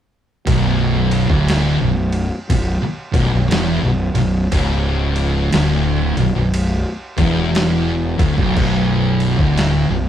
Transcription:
0.47 B0 B1, kick, ride
1.11 ride
1.30 D1 D2, kick
1.48 snare, ride
1.81 B0 B1
2.12 ride
2.50 B0 B1, kick, ride
2.82 muted fingered electric bass stroke, muted distorted electric guitar stroke
3.14 B0 B1, kick, ride
3.32 B0 B1
3.51 E1 E2, snare, ride
3.83 B0 B1
4.14 B0 B1, snare, ride
4.51 C#1 C#2, kick, ride
5.16 ride
5.53 D1 D2, snare, ride
6.16 B0 B1, ride
6.35 B0 B1
6.54 ride
7.17 E1 E2, kick, ride
7.55 snare, ride
8.18 D1 D2, kick, ride
8.37 B0 B1, kick
8.55 B0 B1, kick, crash
9.20 ride
9.38 D1 D2, kick
9.57 snare, ride
9.88 B0 B1

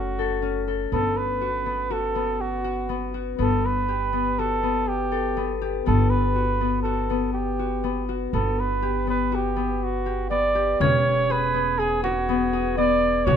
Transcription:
Already playing: F#1 A3 C#4 F#4
0.19 A4
0.42 C#4
0.68 A4
0.92 G1 B3 A4
1.17 B4
1.41 F#4
1.66 B3
1.90 F#4 A4
2.15 B3
2.41 F#4
2.64 F#4
2.89 B3
3.14 F#4
3.38 G1 B3 A4
3.66 B4
3.88 G4
4.13 B3
4.39 F#4 A4
4.63 B3
4.88 G4
5.12 A4
5.37 B3
5.61 G4
5.86 G1 B3 A4
6.10 B4
6.36 F#4
6.61 B3
6.83 F#4 A4
7.10 B3
7.33 G4
7.59 F#4
7.84 B3
8.09 F#4
8.33 G1 B3 A4
8.60 B4
8.82 G4
9.07 B3 B4
9.32 F#4 G4
9.56 B3
9.83 F#4
10.06 G4
10.30 B3 D5
10.55 G4
10.80 E1 C#4 C#5 G#6, frame drum
11.05 frame drum
11.30 G#4 B4
11.54 B3
11.79 G#4
12.04 F#4, frame drum
12.29 B3
12.53 G#4
12.78 B3 D5
13.25 B1 F#4 C#5, frame drum

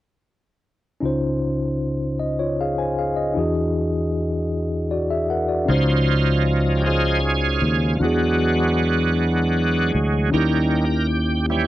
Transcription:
1.01 C#2 C#3 C#4 D#4 F4
1.05 C5
2.20 D#5
2.39 F4 C#5
2.61 G#4 F5
2.78 C5 G#5
2.99 G#4 F5
3.16 D#5
3.34 E2 E3 D4 E4 F#4
3.39 G#4
4.91 F#4 D5
5.11 G#4 E5
5.30 A#4 F#5
5.48 F#4 D5
5.66 C#2 C#3 F3 C#4 D#4 F4
5.70 D#4 F4 C5
6.77 G4
6.86 F3 G#3 D#4 F4 G#4 C5
7.61 D#2 G#4
7.95 F4
8.00 E2 E3 F#3 G#3 D4 E4 F#4
8.04 B3 D4 G#4
9.95 D2
10.30 D#3 G3 C#4 D#4 E4
10.34 D#2 G4 A#4
11.50 E3 G3 C#4 G4

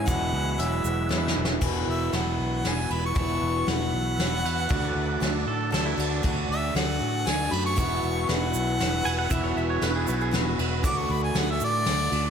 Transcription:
0.06 E1 E2 B2 F#3 G#3 B3 E4 F#4 G#4 B4 E5 F#5, kick, closed hi-hat, shaker
0.32 C#2 F#3 G#3 B3 E4
0.58 E1 F#3 G#3 B3 E4 E5, closed hi-hat
0.72 shaker
0.84 E1 F#3 G#3 B3 E4, shaker
1.09 E2 F#3 G#3 B3 E4, snare, shaker
1.28 snare
1.35 E1 F#3 G#3 B3 E4
1.45 snare
1.61 E1 E2 B2 E3 B3 E4 F#4 B4 E5, kick, crash
1.87 E1 E5
2.12 E1 E3 B3 E4 F#4 F#5, snare, ride
2.39 B1
2.63 E1 E3 B3 E4 F#4, snare, ride
2.68 G#5
2.90 E1 B5, ride
3.06 C#6
3.15 E1 E2 B2 E3 B3 E4 F#4, kick, ride
3.42 E1
3.67 E1 E3 B3 E4 F#4 F#5, snare, ride
3.93 B1
4.17 E1 E3 B3 E4 F#4, snare, ride
4.44 E2 B4, ride
4.69 D2 D3 A3 D4 F#4 A4 D5, kick, ride
4.95 D2
5.20 D2 D3 A3 D4 F#4, snare, ride
5.47 A2 A4
5.71 D2 D3 A3 D4 F#4 A4, snare, ride
5.86 E4
5.97 D2 A3 D4 F#4, ride
6.23 D2 D3 A3 D4 F#4, kick, ride
6.49 D2 E5
6.74 D2 D3 A3 D4 F#4 F#5, snare, ride
6.99 A2 A3 D4 F#4
7.24 D2 D3 A3 D4 F#4 G#5, snare, ride
7.50 F#2 A3 D4 F#4 B5, ride
7.66 C#6
7.76 E1 E2 B2 E3 B3 E4 F#4 B4 E5, kick, ride, shaker
8.03 E1, shaker
8.27 E1 E3 B3 E4 F#4 F#5, snare, ride
8.54 B1, shaker
8.66 shaker
8.79 E1 E3 B3 E4 F#4, snare, ride
9.05 E1 G#5, ride
9.19 F#5
9.30 E1 E2 B2 E3 B3 E4 F#4 E5, kick, ride, shaker
9.44 C#5
9.56 E1 E5, shaker
9.70 C#5
9.82 E1 E3 B3 E4 F#4 B4, snare, ride
9.96 G#4
10.07 B1 E3 B3 E4 F#4 B4, shaker
10.20 G#4, shaker
10.31 E1 E3 B3 E4 F#4, snare, ride
10.59 E1 F#4, ride
10.82 D2 D3 A3 D4 F#4 A4 D5 D6, kick, ride, shaker
10.97 C#6
11.09 D2 B5, shaker
11.24 G#5
11.34 D2 D3 A3 D4 F#4, snare, ride
11.38 F#5
11.51 E5
11.60 A2, shaker
11.64 D5
11.73 shaker
11.85 D2 D3 A3 D4 F#4, snare, ride
12.10 D2 A3 D4 F#4, ride

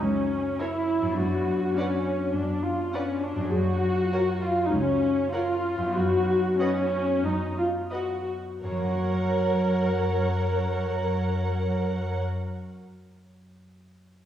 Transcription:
Already playing: F#2 A#3 C#4 F#4
0.00 C#2 C#4
0.59 E4 A#4 C#5
1.02 F#2
1.06 B3
1.11 D4
1.15 F#2 F#4
1.77 C#4 B4 D5 F#5
2.36 F#2 D4
2.64 F4
2.94 C#4 B4 D5 F#5
3.23 D4
3.36 F#2
3.40 A#3
3.45 C#4 G#4
3.49 F#4
3.54 F#2
4.13 A#4 C#5 F#5
4.43 F4
4.66 D#4
4.72 C#2 C#4
5.33 F4 A#4 C#5 F#5
5.78 F#2
5.83 B3
5.87 D#4
5.92 F#4
5.96 F#2 F#4
6.60 C#4 B4 D#5 F#5
7.26 F#2 D#4
7.58 F4
7.92 F#4 B4 D#5 F#5
8.63 F#2 A#4 C#5 F#5
8.71 F#3
8.78 A#3
8.85 C#4
8.92 F#4
8.99 C#5

